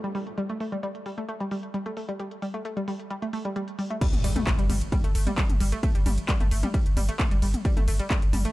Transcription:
Already playing: downlifter
0.04 synth arpeggio sound G3, closed hi-hat
0.15 synth arpeggio sound G3, open hi-hat
0.27 closed hi-hat
0.38 synth arpeggio sound G3, closed hi-hat
0.49 synth arpeggio sound A3, closed hi-hat
0.60 synth arpeggio sound A3, open hi-hat
0.72 synth arpeggio sound G3, closed hi-hat
0.83 synth arpeggio sound G3, closed hi-hat
0.95 closed hi-hat
1.06 synth arpeggio sound G3, open hi-hat
1.18 synth arpeggio sound A3, closed hi-hat
1.29 synth arpeggio sound A3, closed hi-hat
1.40 synth arpeggio sound G3, closed hi-hat
1.51 synth arpeggio sound G3, open hi-hat
1.63 closed hi-hat
1.74 synth arpeggio sound G3, closed hi-hat
1.86 synth arpeggio sound A3, closed hi-hat
1.97 synth arpeggio sound A3, open hi-hat
2.09 synth arpeggio sound G3, closed hi-hat
2.20 synth arpeggio sound G3, closed hi-hat
2.31 closed hi-hat
2.42 synth arpeggio sound G3, open hi-hat
2.54 synth arpeggio sound A3, closed hi-hat
2.65 synth arpeggio sound A3, closed hi-hat
2.77 synth arpeggio sound G3, closed hi-hat
2.88 synth arpeggio sound G3, open hi-hat
3.00 closed hi-hat
3.10 synth arpeggio sound G3, closed hi-hat
3.22 synth arpeggio sound A3, closed hi-hat
3.33 synth arpeggio sound A3, open hi-hat
3.45 synth arpeggio sound G3, closed hi-hat
3.56 synth arpeggio sound G3, closed hi-hat
3.68 closed hi-hat
3.79 synth arpeggio sound G3, open hi-hat
3.90 synth arpeggio sound A3, closed hi-hat
4.01 synth arpeggio sound G3, kick, closed hi-hat, crash, ride, impact
4.13 sub bass G1, closed hi-hat, mid tom, ride
4.24 sub bass G1, synth arpeggio sound G3, open hi-hat, ride
4.36 synth arpeggio sound A3, closed hi-hat, mid tom, ride
4.47 synth arpeggio sound A3, kick, clap, closed hi-hat, ride
4.59 sub bass G1, synth arpeggio sound G3, closed hi-hat, ride
4.70 sub bass G1, synth arpeggio sound G3, open hi-hat, mid tom, ride
4.81 closed hi-hat, ride
4.92 synth arpeggio sound G3, kick, closed hi-hat, mid tom, ride
5.04 sub bass G1, synth arpeggio sound A3, closed hi-hat, ride
5.15 sub bass G1, synth arpeggio sound A3, open hi-hat, ride
5.27 synth arpeggio sound G3, closed hi-hat, mid tom, ride
5.38 synth arpeggio sound G3, kick, clap, closed hi-hat, ride
5.50 sub bass G1, closed hi-hat, mid tom, ride
5.60 sub bass G1, synth arpeggio sound G3, open hi-hat, ride
5.72 synth arpeggio sound A3, closed hi-hat, ride
5.83 synth arpeggio sound A3, kick, closed hi-hat, mid tom, ride
5.95 sub bass G1, synth arpeggio sound G3, closed hi-hat, ride
6.06 sub bass G1, synth arpeggio sound G3, open hi-hat, mid tom, ride
6.18 closed hi-hat, ride
6.29 synth arpeggio sound G3, kick, clap, closed hi-hat, ride
6.40 sub bass G1, synth arpeggio sound A3, closed hi-hat, mid tom, ride
6.51 sub bass G1, synth arpeggio sound A3, open hi-hat, ride
6.63 synth arpeggio sound G3, closed hi-hat, mid tom, ride
6.74 synth arpeggio sound G3, kick, closed hi-hat, ride
6.86 sub bass G1, closed hi-hat, ride
6.97 sub bass G1, synth arpeggio sound G3, open hi-hat, mid tom, ride
7.09 synth arpeggio sound A3, closed hi-hat, ride
7.20 synth arpeggio sound A3, kick, clap, closed hi-hat, mid tom, ride
7.31 sub bass G1, synth arpeggio sound G3, closed hi-hat, ride
7.42 sub bass G1, synth arpeggio sound G3, open hi-hat, ride
7.54 closed hi-hat, mid tom, ride
7.65 synth arpeggio sound G3, kick, closed hi-hat, ride
7.77 sub bass G1, synth arpeggio sound A3, closed hi-hat, mid tom, ride
7.88 sub bass G1, synth arpeggio sound A3, open hi-hat, ride
7.99 synth arpeggio sound G3, closed hi-hat, ride
8.10 synth arpeggio sound G3, kick, clap, closed hi-hat, mid tom, ride
8.22 sub bass G1, closed hi-hat, ride
8.33 sub bass G1, synth arpeggio sound G3, open hi-hat, mid tom, ride
8.45 synth arpeggio sound A3, closed hi-hat, ride

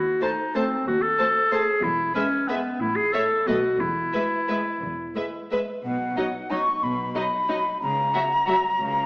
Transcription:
Already playing: double bass section D#2, cello section D#2, clarinet F#4
0.21 viola section A3, clarinet D#4, violin section C5 A5
0.55 viola section A3, clarinet C4, violin section C5 A5
0.86 double bass section D#2, cello section D#2, clarinet F#4
1.02 clarinet A4
1.18 viola section A3, violin section C5 A5
1.52 viola section A3, clarinet G#4, violin section C5 A5
1.83 double bass section E1, cello section E2, clarinet E4
2.15 viola section G#3, clarinet C#4, violin section B4 E5
2.48 viola section G#3, clarinet B3, violin section B4 E5
2.81 double bass section A1, cello section A2, clarinet E4
2.95 clarinet G#4
3.12 viola section A3, clarinet A4, violin section C#5 E5
3.47 double bass section B1, cello section B2, viola section A3, clarinet F#4, violin section B4 D#5
3.80 double bass section E1, cello section E2, clarinet E4
4.14 viola section G#3, violin section B4 E5
4.48 viola section G#3, violin section B4 E5
4.82 double bass section E1, cello section E2
5.16 viola section G#3, violin section B4 E5
5.51 viola section G#3, violin section B4 E5
5.84 double bass section B1, cello section B2, flute F#5
6.17 viola section F#3, violin section D#4 D#5
6.51 viola section F#3, violin section D#4 D#5, flute C#6
6.83 double bass section B1, cello section B2, flute B5
7.16 viola section F#3, violin section D#4 D#5
7.49 viola section F#3, violin section D#4 D#5
7.82 double bass section C#2, cello section C#3, flute A#5
8.14 viola section F#3, violin section F#4 E5
8.48 viola section F#3, violin section F#4 E5
8.80 double bass section C#2, cello section C#3

